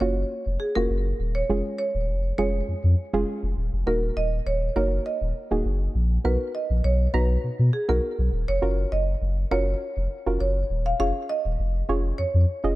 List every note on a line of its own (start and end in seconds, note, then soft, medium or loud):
0.00 0.24 F#1 medium
0.00 0.47 A#3 medium
0.00 0.47 C#4 medium
0.00 0.47 F4 medium
0.00 0.47 F#4 medium
0.00 0.56 C#5 loud
0.46 0.57 F1 medium
0.60 0.76 G#4 medium
0.75 0.87 F1 medium
0.75 1.21 A#3 medium
0.75 1.21 C#4 medium
0.75 1.21 F4 medium
0.75 1.21 F#4 medium
0.75 1.37 A#4 loud
0.90 1.13 F#1 loud
1.20 1.43 D#1 medium
1.35 1.76 C#5 loud
1.49 1.62 F1 loud
1.49 2.04 G#3 medium
1.49 2.04 C#4 medium
1.49 2.05 F4 medium
1.49 2.05 G#4 medium
1.79 2.37 C#5 loud
1.95 2.10 D#1 loud
2.09 2.32 F1 loud
2.38 2.62 F1 loud
2.38 2.85 G#3 medium
2.38 2.85 C#4 medium
2.38 2.85 F4 medium
2.38 2.85 G#4 loud
2.38 3.53 C#5 medium
2.68 2.74 F2 medium
2.84 2.95 F2 loud
3.13 3.25 F1 medium
3.13 3.58 G#3 loud
3.13 3.58 C#4 loud
3.13 3.58 F4 loud
3.13 3.59 G#4 loud
3.43 3.54 F1 medium
3.57 3.70 D#1 medium
3.73 3.84 F1 loud
3.87 4.10 D#1 loud
3.87 4.42 A#3 medium
3.87 4.42 D#4 medium
3.87 4.42 F#4 medium
3.87 4.00 A#4 loud
3.87 4.42 A#4 medium
4.16 4.40 D#1 loud
4.16 4.30 D#5 loud
4.46 4.70 D#1 medium
4.46 4.60 C#5 loud
4.76 4.99 F#1 medium
4.76 5.22 A#3 medium
4.76 5.22 D#4 medium
4.76 5.23 F#4 medium
4.76 5.23 A#4 loud
4.76 5.07 C#5 loud
5.06 5.91 D#5 loud
5.21 5.32 D#1 medium
5.51 5.62 D#1 medium
5.51 5.96 A#3 medium
5.51 5.96 D#4 medium
5.51 5.96 F#4 medium
5.51 5.96 G#4 medium
5.65 5.89 F#1 loud
5.95 6.18 A#1 medium
6.24 6.37 B1 loud
6.24 6.80 B3 medium
6.24 6.80 D#4 medium
6.24 6.80 F#4 medium
6.24 6.80 A#4 medium
6.24 6.52 B4 medium
6.55 6.85 D#5 medium
6.70 6.81 A#1 medium
6.84 7.08 B1 loud
6.84 7.15 C#5 medium
7.14 7.37 B1 loud
7.14 7.60 B3 medium
7.14 7.60 D#4 medium
7.14 7.60 F#4 medium
7.14 7.69 B4 medium
7.14 7.60 A#5 loud
7.44 7.50 B2 medium
7.59 7.70 B2 loud
7.73 7.89 G#4 medium
7.89 8.00 B1 loud
7.89 8.33 B3 medium
7.89 8.34 D#4 medium
7.89 8.34 F#4 medium
7.89 8.44 A#4 medium
7.89 8.34 A#4 loud
8.19 8.30 B1 medium
8.33 8.45 D#1 medium
8.48 8.59 F1 loud
8.48 8.93 C#5 loud
8.62 8.86 F#1 loud
8.62 9.17 C#4 medium
8.62 9.17 F4 medium
8.62 9.17 F#4 medium
8.62 9.17 A#4 loud
8.92 9.15 F#1 medium
8.92 9.53 D#5 loud
9.22 9.45 F#1 loud
9.51 9.75 F#1 medium
9.51 9.98 C#4 medium
9.51 9.98 F4 medium
9.51 9.98 F#4 medium
9.51 9.98 A#4 loud
9.51 10.37 C#5 loud
9.97 10.08 F1 medium
10.26 10.38 F1 medium
10.26 10.71 C#4 medium
10.26 10.71 F4 medium
10.26 10.71 F#4 medium
10.26 10.71 A#4 medium
10.40 10.64 F#1 loud
10.40 10.87 C#5 loud
10.70 10.94 D#1 medium
10.86 10.92 F5 loud
11.00 11.12 F1 loud
11.00 11.55 C#4 medium
11.00 11.55 F4 medium
11.00 11.55 G#4 medium
11.00 11.55 C#5 medium
11.00 11.27 F5 loud
11.29 12.21 D#5 loud
11.45 11.56 D#1 medium
11.59 11.83 F1 loud
11.89 12.12 F1 loud
11.89 12.35 C#4 medium
11.89 12.35 F4 medium
11.89 12.35 G#4 medium
11.89 12.36 C#5 loud
12.18 12.25 F2 medium
12.18 12.75 C#5 medium
12.34 12.45 F2 loud
12.64 12.75 F1 loud
12.64 12.75 C#4 medium
12.64 12.75 F4 medium
12.64 12.75 G#4 medium
12.64 12.75 D#5 loud